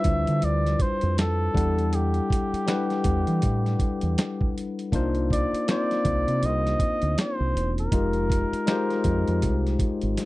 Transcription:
0.00 1.54 G3 medium
0.00 1.55 D4 medium
0.00 1.55 E4 medium
0.00 1.56 F4 medium
0.00 1.10 B4 medium
0.00 1.56 C5 medium
0.00 0.46 E5 medium
0.04 0.24 D2 medium
0.04 kick medium
0.04 closed hi-hat medium
0.27 0.41 D3 medium
0.27 closed hi-hat soft
0.42 0.75 D2 medium
0.42 0.84 D5 medium
0.42 closed hi-hat medium
0.66 snare soft
0.66 closed hi-hat soft
0.79 1.18 C5 medium
0.79 kick medium
0.79 closed hi-hat soft
1.01 1.48 F2 medium
1.01 closed hi-hat soft
1.18 1.97 A4 medium
1.18 snare medium
1.18 closed hi-hat medium
1.54 2.19 E2 medium
1.54 2.60 G3 medium
1.54 2.61 D4 medium
1.54 2.61 E4 medium
1.54 2.62 A4 medium
1.54 2.62 F#5 medium
1.54 kick medium
1.54 closed hi-hat medium
1.79 closed hi-hat soft
1.93 4.56 G4 medium
1.93 closed hi-hat medium
2.14 closed hi-hat soft
2.30 kick medium
2.30 closed hi-hat medium
2.53 muted fingered electric bass stroke soft
2.53 closed hi-hat soft
2.66 4.08 G3 medium
2.66 4.09 D4 medium
2.66 4.09 E4 medium
2.66 4.10 B4 medium
2.66 4.10 F#5 medium
2.66 snare medium
2.66 closed hi-hat medium
2.90 snare soft
2.90 closed hi-hat soft
3.04 3.24 E2 medium
3.04 kick medium
3.04 closed hi-hat medium
3.27 3.40 E3 medium
3.27 closed hi-hat soft
3.42 3.75 A2 medium
3.42 kick medium
3.42 closed hi-hat medium
3.66 snare soft
3.66 closed hi-hat soft
3.79 kick medium
3.79 closed hi-hat soft
4.01 4.15 E2 medium
4.01 closed hi-hat soft
4.18 snare medium
4.18 closed hi-hat medium
4.41 kick medium
4.58 closed hi-hat medium
4.79 closed hi-hat soft
4.92 5.44 C2 medium
4.92 5.63 A#3 medium
4.92 5.63 D4 medium
4.92 5.64 D#4 medium
4.92 5.64 F4 medium
4.92 5.65 C5 medium
4.92 kick medium
4.92 closed hi-hat medium
5.15 closed hi-hat soft
5.30 5.66 D5 medium
5.30 kick medium
5.30 closed hi-hat medium
5.53 muted fingered electric bass stroke soft
5.53 closed hi-hat soft
5.68 7.09 A#3 medium
5.68 7.09 C4 medium
5.68 7.10 D#4 medium
5.68 7.10 F4 medium
5.68 7.11 C5 medium
5.68 6.47 D5 loud
5.68 snare medium
5.68 closed hi-hat medium
5.91 snare soft
5.91 closed hi-hat soft
6.05 6.24 C2 medium
6.05 kick medium
6.05 closed hi-hat medium
6.28 6.44 C3 medium
6.28 closed hi-hat soft
6.43 6.75 C2 medium
6.43 7.19 D#5 loud
6.43 closed hi-hat medium
6.66 snare soft
6.66 closed hi-hat soft
6.79 kick medium
6.79 closed hi-hat soft
7.02 7.15 D2 medium
7.02 closed hi-hat soft
7.18 7.75 C5 medium
7.18 snare medium
7.18 closed hi-hat medium
7.40 7.53 C2 medium
7.55 7.87 E1 medium
7.55 closed hi-hat medium
7.78 10.00 A#4 medium
7.78 closed hi-hat soft
7.92 8.44 F1 medium
7.92 8.63 G#3 medium
7.92 8.63 D#4 medium
7.92 8.64 F4 medium
7.92 8.64 G4 medium
7.92 8.64 A#4 medium
7.92 kick medium
7.92 closed hi-hat medium
8.13 closed hi-hat soft
8.30 kick medium
8.30 closed hi-hat medium
8.53 muted fingered electric bass stroke soft
8.53 closed hi-hat soft
8.66 10.08 G#3 medium
8.66 10.09 D#4 medium
8.66 10.09 F4 medium
8.66 10.09 G4 medium
8.66 10.10 C5 medium
8.66 snare medium
8.66 closed hi-hat medium
8.90 snare soft
8.90 closed hi-hat soft
9.04 9.24 F2 medium
9.04 kick medium
9.04 closed hi-hat medium
9.28 9.41 F2 medium
9.28 closed hi-hat soft
9.42 9.75 C2 medium
9.42 kick medium
9.42 closed hi-hat medium
9.66 snare soft
9.66 closed hi-hat soft
9.79 kick medium
9.79 closed hi-hat medium
10.01 10.15 G#1 medium
10.01 closed hi-hat soft
10.17 snare soft
10.17 closed hi-hat medium

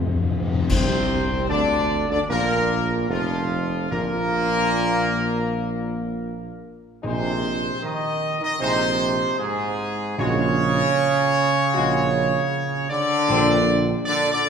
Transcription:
0.00 0.33 F2 medium
0.00 0.25 C3 medium
0.00 0.37 A3 medium
0.00 0.33 F4 medium
0.00 0.25 C5 loud
0.07 0.13 F2 loud
0.15 0.21 F2 loud
0.22 0.30 F2 medium
0.31 0.38 F2 loud
0.39 0.46 F2 loud
0.47 0.53 F2 loud
0.54 0.60 F2 loud
0.61 0.69 F2 loud
0.68 1.51 C2 loud
0.68 1.86 A#2 loud
0.68 1.45 C3 loud
0.68 1.46 C4 loud
0.68 1.46 C5 loud
0.68 concert bass drum medium
0.68 crash medium
1.48 2.09 D2 loud
1.48 2.05 D3 loud
1.48 2.06 D4 loud
1.48 2.06 D5 loud
2.09 2.19 D2 loud
2.09 2.18 D3 loud
2.09 2.29 D4 medium
2.09 2.19 D5 loud
2.29 3.05 A#1 loud
2.29 3.05 A#2 loud
2.29 3.05 A#3 loud
2.29 3.05 A#4 loud
3.09 3.87 F1 loud
3.09 3.88 F2 medium
3.09 3.87 F3 loud
3.09 3.87 F4 loud
3.91 6.61 A#1 loud
3.91 6.61 A#2 loud
3.91 5.05 A#2 loud
3.91 6.61 A#3 loud
3.91 6.61 A#4 loud
7.02 7.70 A#1 loud
7.02 8.18 A#2 loud
7.02 7.79 C3 loud
7.02 7.32 G#3 medium
7.02 7.32 D#4 medium
7.02 7.79 C5 loud
7.82 8.37 D#3 loud
7.82 8.42 D#5 loud
8.40 8.59 D#3 loud
8.40 8.61 D#5 loud
8.59 9.25 A#1 medium
8.59 9.34 C3 loud
8.59 8.89 G#3 medium
8.59 8.89 D#4 loud
8.59 9.35 C5 loud
9.39 10.15 G#2 loud
9.39 10.19 G#4 loud
10.17 10.84 A#1 loud
10.17 11.31 A#2 loud
10.17 12.85 C#3 loud
10.17 10.47 G#3 loud
10.17 10.47 F#4 loud
10.17 12.86 C#5 loud
11.74 12.39 A#1 loud
11.74 12.02 G#3 loud
11.74 12.02 F#4 loud
12.90 13.92 D3 loud
12.90 13.88 D5 loud
13.28 13.94 A#1 loud
13.28 14.41 A#2 loud
13.28 13.57 C4 loud
13.28 13.57 D4 loud
14.05 14.32 D3 loud
14.05 14.30 D5 loud
14.32 14.49 D3 loud
14.32 14.49 D5 loud

